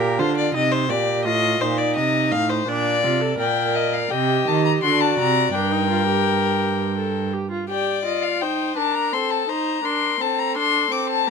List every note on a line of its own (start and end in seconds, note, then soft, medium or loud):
0.00 0.20 A#2 medium
0.00 0.21 G4 medium
0.00 0.21 A#4 medium
0.19 0.54 D3 medium
0.19 0.56 F4 medium
0.19 0.37 C5 medium
0.37 0.54 D5 medium
0.54 0.91 C3 medium
0.54 0.89 D#4 medium
0.54 0.73 D#5 medium
0.72 0.91 C5 medium
0.89 1.27 A#2 medium
0.89 1.26 G4 medium
0.89 1.24 D5 medium
1.25 1.60 A2 medium
1.25 1.62 F4 medium
1.25 1.62 D#5 loud
1.60 1.98 A#2 medium
1.60 2.67 D#4 medium
1.60 1.79 C5 medium
1.78 1.95 D5 medium
1.96 2.33 C3 medium
1.96 2.33 D#5 medium
2.31 2.66 A2 medium
2.31 2.51 F5 medium
2.49 2.70 C5 medium
2.67 3.05 A#2 medium
2.67 3.02 D4 medium
2.67 3.39 D5 medium
3.03 3.38 C3 medium
3.03 3.23 F4 medium
3.21 3.38 A4 medium
3.39 4.07 A#2 medium
3.39 4.12 A#4 medium
3.39 4.13 D5 medium
3.39 3.77 G5 medium
3.75 3.95 D#5 medium
3.93 4.12 F5 medium
4.10 4.46 C3 medium
4.10 4.84 G4 medium
4.10 4.83 D#5 medium
4.10 4.49 G5 medium
4.47 4.82 D#3 medium
4.47 4.64 A5 medium
4.65 4.72 A#5 medium
4.82 5.18 D3 medium
4.82 5.53 F#4 medium
4.82 5.56 D5 medium
4.82 5.02 C6 medium
5.01 5.18 A5 medium
5.19 5.54 C3 medium
5.19 5.54 A#5 medium
5.54 7.30 G2 medium
5.54 5.73 D4 medium
5.54 7.34 A#4 medium
5.54 7.30 G5 medium
5.72 5.89 D#4 medium
5.90 6.07 F4 medium
6.08 6.96 G4 medium
6.98 7.35 A4 medium
7.33 7.50 G4 medium
7.51 7.69 F4 medium
7.69 8.03 G4 medium
7.69 8.44 D5 medium
7.69 8.03 G5 medium
8.05 8.43 F4 medium
8.05 8.24 D#5 medium
8.23 8.43 F5 medium
8.41 8.76 D#4 medium
8.41 8.79 C5 medium
8.41 8.76 G5 medium
8.77 9.14 D4 medium
8.77 9.15 A#4 medium
8.77 8.96 A5 medium
8.94 9.14 A#5 medium
9.13 9.47 C4 medium
9.13 9.50 A4 medium
9.13 9.32 C6 medium
9.31 9.50 A5 medium
9.48 9.83 D#4 medium
9.48 9.84 C5 medium
9.48 9.87 A#5 medium
9.84 10.19 D4 medium
9.84 10.22 A#4 medium
9.84 10.22 C6 medium
10.20 10.57 C4 medium
10.20 11.26 A4 medium
10.20 10.40 A5 medium
10.39 10.56 A#5 medium
10.56 10.90 D4 medium
10.56 10.94 C6 medium
10.91 11.28 C4 medium
10.91 11.09 D6 medium
11.10 11.29 A5 medium
11.26 11.30 A#3 medium
11.26 11.30 G4 medium